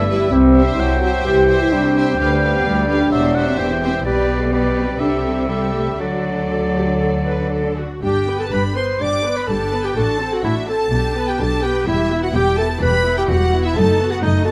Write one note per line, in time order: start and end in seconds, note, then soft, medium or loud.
0.00 0.26 G1 medium
0.00 0.27 G2 medium
0.00 0.34 D5 medium
0.00 0.28 E5 medium
0.08 0.31 G3 medium
0.08 0.32 E4 soft
0.08 0.32 B4 medium
0.08 0.32 E5 soft
0.30 0.73 C2 medium
0.30 0.81 G3 medium
0.30 0.65 C4 medium
0.30 0.77 C5 medium
0.30 0.81 E5 medium
0.56 1.01 G4 soft
0.56 1.02 C5 soft
0.56 1.01 E5 soft
0.64 0.77 D4 medium
0.75 1.20 C2 medium
0.75 1.27 F#3 soft
0.75 1.00 E4 medium
0.75 2.66 C5 medium
0.80 1.26 G5 medium
1.00 1.11 F#4 medium
1.00 1.48 G4 soft
1.00 1.47 C5 soft
1.00 1.48 E5 medium
1.24 1.66 C2 medium
1.24 1.67 C2 medium
1.24 1.74 E3 soft
1.24 1.59 G4 medium
1.24 1.70 G5 medium
1.49 1.94 G4 soft
1.49 1.94 C5 soft
1.49 1.95 E5 soft
1.61 1.72 E4 medium
1.71 2.13 C2 medium
1.71 2.18 G3 medium
1.71 2.07 D4 medium
1.71 3.08 G5 medium
1.96 2.18 G4 soft
1.96 2.19 C5 soft
1.96 2.18 E5 soft
2.08 2.13 C4 medium
2.18 2.59 D2 medium
2.18 2.60 D2 medium
2.18 3.13 G3 medium
2.18 2.53 D4 medium
2.18 2.41 G4 soft
2.18 2.41 B4 soft
2.18 2.41 F5 soft
2.42 2.87 G4 soft
2.42 2.87 B4 soft
2.42 2.87 F5 soft
2.56 2.66 B3 medium
2.65 3.06 D2 medium
2.65 2.88 G3 medium
2.65 3.11 D5 soft
2.88 3.45 D4 medium
2.88 3.11 G4 soft
2.88 3.11 B4 soft
2.88 3.12 F5 soft
3.11 3.53 E1 medium
3.11 3.53 E2 medium
3.11 3.61 F#3 soft
3.11 3.34 G4 soft
3.11 3.35 C5 soft
3.11 3.60 D5 soft
3.11 3.36 E5 medium
3.11 3.35 E5 soft
3.35 3.81 G4 soft
3.35 3.81 C5 soft
3.35 3.80 E5 soft
3.35 3.58 F#5 soft
3.47 3.58 C4 medium
3.58 4.00 E1 medium
3.58 4.00 E2 soft
3.58 4.05 E3 soft
3.58 3.68 D4 medium
3.58 4.05 C5 soft
3.58 4.04 G5 medium
3.81 3.92 C4 medium
3.81 4.04 G4 soft
3.81 4.05 C5 soft
3.81 4.04 E5 soft
4.04 4.95 B1 soft
4.04 4.96 B2 medium
4.04 4.39 G3 medium
4.04 4.49 G3 soft
4.04 4.49 G4 soft
4.04 4.49 B4 medium
4.04 4.49 B4 soft
4.04 4.48 D5 soft
4.04 4.49 D5 soft
4.40 4.52 A3 medium
4.52 4.99 G3 soft
4.52 4.63 B3 medium
4.52 4.98 G4 soft
4.52 4.99 B4 soft
4.52 5.00 B4 soft
4.52 4.98 D5 soft
4.52 5.01 D5 soft
4.74 4.98 C4 medium
4.99 6.00 C2 soft
4.99 6.00 C3 soft
4.99 5.48 G3 soft
4.99 5.11 D4 medium
4.99 5.47 G4 soft
4.99 5.48 A4 soft
4.99 5.48 E5 soft
4.99 5.47 E5 soft
5.24 5.48 C4 medium
5.48 6.01 G3 soft
5.48 5.73 G3 soft
5.48 5.98 G4 soft
5.48 5.99 A4 soft
5.48 5.98 A4 soft
5.48 5.98 E5 soft
5.48 5.99 E5 soft
5.74 5.85 A3 soft
5.99 7.79 D2 soft
5.99 7.79 D3 soft
5.99 7.78 F#3 soft
5.99 7.76 F#3 medium
5.99 6.46 F#4 soft
5.99 7.79 A4 soft
5.99 7.75 A4 soft
5.99 7.83 D5 soft
5.99 7.76 D5 soft
6.51 6.59 A4 soft
6.77 6.85 G4 soft
7.02 7.10 A4 soft
7.27 7.52 B4 soft
7.53 7.78 A4 soft
7.79 8.04 F#4 soft
8.03 8.44 G1 soft
8.03 8.44 G2 soft
8.03 8.26 D4 soft
8.03 8.38 G4 medium
8.03 8.27 G4 soft
8.03 8.38 G5 medium
8.03 8.38 G5 soft
8.28 8.53 B3 soft
8.28 8.53 B4 soft
8.39 8.45 A4 soft
8.39 8.52 A5 soft
8.39 8.53 A5 soft
8.51 8.93 G1 soft
8.51 8.93 G2 medium
8.51 8.76 D4 soft
8.51 8.76 G4 soft
8.51 8.63 B4 medium
8.51 8.76 B5 medium
8.51 8.61 B5 soft
8.76 9.01 B3 soft
8.76 9.00 B4 soft
8.76 9.03 C5 medium
8.76 8.84 C6 soft
8.76 9.00 C6 soft
9.00 9.41 G1 medium
9.00 9.41 G2 medium
9.00 9.23 D4 soft
9.00 9.24 G4 soft
9.00 9.38 D5 medium
9.00 9.37 D6 medium
9.00 9.36 D6 medium
9.25 9.49 B3 soft
9.25 9.49 B4 soft
9.36 9.49 B4 medium
9.36 9.49 B5 soft
9.47 9.89 G1 soft
9.47 9.89 G2 soft
9.47 9.72 D4 soft
9.47 9.73 G4 soft
9.47 9.86 A4 medium
9.47 9.85 A5 soft
9.47 9.84 A5 medium
9.72 9.97 B3 soft
9.72 9.97 B4 soft
9.84 9.96 G4 medium
9.84 9.96 G5 soft
9.84 9.97 G5 soft
9.96 10.37 A1 medium
9.96 10.37 A2 medium
9.96 10.19 D4 soft
9.96 10.19 F#4 soft
9.96 10.35 A4 medium
9.96 10.32 A5 medium
9.96 10.34 A5 soft
10.20 10.44 C4 soft
10.20 10.44 A4 soft
10.33 10.43 F#4 medium
10.33 10.45 F#5 soft
10.44 10.85 A1 medium
10.44 10.85 A2 medium
10.44 10.68 D4 soft
10.44 10.55 E4 medium
10.44 10.68 F#4 soft
10.44 10.68 E5 soft
10.44 10.69 E5 medium
10.68 10.92 C4 soft
10.68 11.31 A4 medium
10.68 10.92 A4 soft
10.68 11.27 A5 medium
10.92 11.32 B1 medium
10.92 11.32 B2 medium
10.92 11.15 D4 soft
10.92 11.15 G4 soft
11.17 11.40 B3 soft
11.17 11.40 B4 soft
11.28 11.39 G4 medium
11.28 11.40 G5 medium
11.28 11.40 G5 soft
11.40 11.80 B1 medium
11.40 11.79 B2 medium
11.40 11.64 D4 soft
11.40 11.64 G4 soft
11.40 11.65 A4 medium
11.40 11.64 A5 medium
11.62 11.87 B3 soft
11.62 11.86 G4 medium
11.62 11.88 B4 soft
11.62 11.86 G5 medium
11.86 12.27 E1 medium
11.86 12.27 E2 medium
11.86 12.10 G3 soft
11.86 12.22 E4 medium
11.86 12.09 G4 soft
11.86 12.21 E5 medium
11.86 12.22 E5 medium
12.12 12.35 B3 soft
12.12 12.35 E4 soft
12.22 12.28 F#4 medium
12.22 12.34 F#5 soft
12.22 12.28 F#5 medium
12.33 12.75 E1 medium
12.33 12.74 E2 medium
12.33 12.57 G4 medium
12.33 12.59 G4 soft
12.33 12.57 G5 medium
12.33 12.58 G5 medium
12.37 12.59 G3 soft
12.57 12.83 B3 soft
12.57 12.83 E4 soft
12.57 12.69 A4 medium
12.57 12.82 A5 medium
12.57 12.67 A5 medium
12.81 13.22 E1 medium
12.81 13.21 E2 medium
12.81 13.05 G3 soft
12.81 13.05 G4 soft
12.81 13.17 B4 medium
12.81 13.17 B5 medium
13.06 13.30 B3 soft
13.06 13.30 E4 soft
13.17 13.30 G4 medium
13.17 13.22 G5 medium
13.17 13.29 G5 medium
13.28 13.69 E1 medium
13.28 13.69 E2 medium
13.28 13.53 G3 soft
13.28 13.67 F#4 medium
13.28 13.54 G4 soft
13.28 13.63 F#5 medium
13.28 13.64 F#5 medium
13.53 13.77 B3 soft
13.53 13.77 E4 soft
13.64 13.78 E4 medium
13.64 13.76 E5 medium
13.64 13.77 E5 medium
13.76 14.15 F#1 medium
13.76 14.16 F#2 medium
13.76 13.98 A3 medium
13.76 13.99 D#4 medium
13.76 14.12 A4 medium
13.76 14.11 A5 medium
14.00 14.23 B3 soft
14.00 14.23 F#4 soft
14.11 14.21 F#4 medium
14.11 14.16 F#5 medium
14.11 14.23 F#5 medium
14.22 14.51 F#1 medium
14.22 14.51 F#2 medium
14.22 14.46 A3 medium
14.22 14.44 D#4 medium
14.22 14.46 D#4 medium
14.22 14.30 D#5 medium
14.22 14.46 D#5 medium
14.45 14.51 B3 soft
14.45 14.51 F#4 soft
14.45 14.51 A4 medium
14.45 14.51 A5 medium